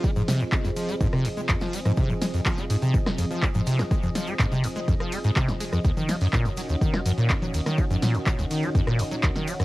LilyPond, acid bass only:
\new Staff \with { instrumentName = "Acid bass" } { \clef bass \time 4/4 \key f \phrygian \tempo 4 = 124 aes16 aes,16 c16 f,16 aes16 f,16 f16 aes16 aes,16 c16 f,16 aes16 f,16 f16 aes16 aes,16 | c16 f,16 aes16 f,16 f16 aes16 aes,16 c16 f,16 aes16 f,16 f16 aes16 aes,16 c16 f,16 | aes16 f,16 f16 aes16 aes,16 c16 f,16 aes16 f,16 f16 aes16 aes,16 c16 f,16 aes16 f,16 | ees,16 ees16 ges16 ges,16 bes,16 ees,16 ges16 ees,16 ees16 ges16 ges,16 bes,16 ees,16 ges16 ees,16 ees16 |
ges16 ges,16 bes,16 ees,16 ges16 ees,16 ees16 ges16 ges,16 bes,16 ees,16 ges16 ees,16 ees16 ges16 ges,16 | }